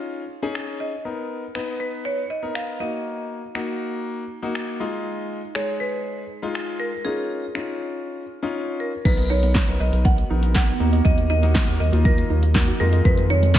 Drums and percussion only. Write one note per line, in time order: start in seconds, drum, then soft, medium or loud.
0.55 finger snap loud
1.55 finger snap loud
2.55 finger snap loud
3.55 finger snap loud
4.55 finger snap loud
5.55 finger snap loud
6.55 finger snap loud
7.55 finger snap loud
9.05 kick loud
9.05 crash medium
9.18 closed hi-hat medium
9.43 closed hi-hat medium
9.55 kick loud
9.55 snare medium
9.55 clap loud
9.68 closed hi-hat medium
9.93 closed hi-hat medium
10.05 kick loud
10.18 closed hi-hat medium
10.43 closed hi-hat medium
10.55 kick loud
10.55 snare medium
10.55 clap loud
10.68 closed hi-hat medium
10.93 closed hi-hat medium
11.05 kick loud
11.18 closed hi-hat medium
11.43 closed hi-hat medium
11.55 kick loud
11.55 snare medium
11.55 clap loud
11.68 closed hi-hat medium
11.93 closed hi-hat medium
12.05 kick loud
12.18 closed hi-hat medium
12.43 closed hi-hat medium
12.55 kick loud
12.55 snare medium
12.55 clap loud
12.68 closed hi-hat medium
12.93 closed hi-hat medium
13.05 kick loud
13.18 closed hi-hat medium
13.43 closed hi-hat medium
13.54 kick loud
13.54 snare medium
13.54 clap loud